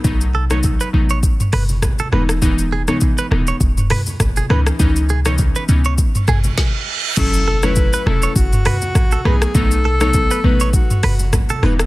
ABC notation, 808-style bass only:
X:1
M:4/4
L:1/16
Q:"Swing 16ths" 1/4=101
K:Bmix
V:1 name="808-style bass" clef=bass
B,,,4- B,,, z A,,,3 z F,,,3 z E,,,2- | E,,,4- E,,, z D,,,2 E,,,3 z F,,,2 C,,2 | C,,4- C,, z C,,3 z G,,,2 z4 | F,,,4- F,,, z E,,,2 F,,,3 z A,,,2 B,,,2 |
B,,,4- B,,, z A,,,3 z F,,,3 z E,,,2 |]